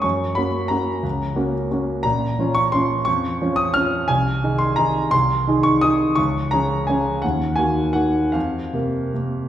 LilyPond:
\new Staff \with { instrumentName = "Grand piano" } { \time 3/4 \key ges \major \tempo 4 = 174 << { des'''4 ces'''4 bes''4~ | bes''4. r4. | \key bes \minor bes''4. des'''8 c'''4 | des'''4. ees'''8 f'''4 |
aes''4. c'''8 bes''4 | c'''4. des'''8 ees'''4 | des'''4 bes''4 aes''4 | ges''4 aes''4 ges''4 |
f''2. | } \\ { ges,4 <bes des' ges'>4 <bes des' ges'>4 | des,4 <bes des' ges'>4 <bes des' ges'>4 | bes,,4 <f des' f'>4 <f des' f'>4 | f,4 <f des' f'>4 <f des' f'>4 |
c,4 <ees ees' aes'>4 <ees ees' aes'>4 | c,4 <ees ees' aes'>4 <ees ees' aes'>4 | des,4 <f des' aes'>4 <f des' aes'>4 | ees,4 <ees bes ges'>4 <ees bes ges'>4 |
f,4 <c bes bes'>4 <c bes bes'>4 | } >> }